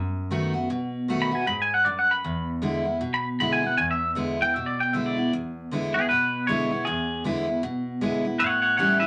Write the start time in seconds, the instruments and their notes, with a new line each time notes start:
Already playing: steel-string acoustic guitar F#2
0.31 steel-string acoustic guitar D#3 A3 B3 F#4
0.54 steel-string acoustic guitar B3 F#4
0.70 steel-string acoustic guitar B2
1.08 steel-string acoustic guitar D#3 A3 B3 F#4
1.22 clean electric guitar B5
1.31 steel-string acoustic guitar B3 F#4, clean electric guitar G#5
1.47 steel-string acoustic guitar G#2, clean electric guitar B5
1.62 clean electric guitar G#5
1.74 clean electric guitar F#5
1.85 steel-string acoustic guitar F#2, clean electric guitar D5
1.99 clean electric guitar F#5
2.11 clean electric guitar B5
2.24 steel-string acoustic guitar E2
2.62 steel-string acoustic guitar D3 G#3 B3 E4
2.84 steel-string acoustic guitar B3 E4
3.01 steel-string acoustic guitar B2
3.14 clean electric guitar B5
3.40 steel-string acoustic guitar D3 G#3 B3 E4, clean electric guitar B5
3.53 clean electric guitar G#5
3.63 steel-string acoustic guitar B3 E4, clean electric guitar F#5
3.78 steel-string acoustic guitar E2, clean electric guitar G#5
3.91 clean electric guitar E5
4.15 steel-string acoustic guitar D3 G#3 B3 E4
4.39 steel-string acoustic guitar B3 E4, clean electric guitar G5
4.54 steel-string acoustic guitar B2, clean electric guitar E5
4.66 clean electric guitar D5
4.80 clean electric guitar G5
4.93 steel-string acoustic guitar D3 G#3 B3 E4, clean electric guitar E5
5.06 clean electric guitar D5
5.16 steel-string acoustic guitar B3 E4
5.33 steel-string acoustic guitar E2
5.71 steel-string acoustic guitar D3 G#3 B3 E4
5.94 steel-string acoustic guitar B3 E4, clean electric guitar G#4
6.09 steel-string acoustic guitar B2, clean electric guitar B4
6.47 steel-string acoustic guitar D3 G#3 B3 E4, clean electric guitar C#5
6.71 steel-string acoustic guitar B3 E4
6.85 steel-string acoustic guitar E2, clean electric guitar G#4
7.24 steel-string acoustic guitar D3 G#3 B3 E4
7.47 steel-string acoustic guitar B3 E4
7.63 steel-string acoustic guitar B2
8.01 steel-string acoustic guitar D3 G#3 B3 E4
8.25 steel-string acoustic guitar B3 E4
8.39 steel-string acoustic guitar A2, clean electric guitar C#5 F#5
8.62 clean electric guitar C#5 F#5
8.77 steel-string acoustic guitar E3 G3 C#4 E4, clean electric guitar C#5 F#5
8.99 steel-string acoustic guitar C#4 E4, clean electric guitar B4 E5